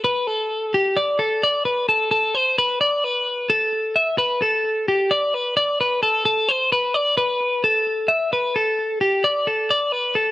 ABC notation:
X:1
M:9/8
L:1/8
Q:3/8=87
K:Gmix
V:1 name="Clean electric guitar"
B A2 G d A d B A | A c B d B2 A2 e | B A2 G d B d B A | A c B d B2 A2 e |
B A2 G d A d B A |]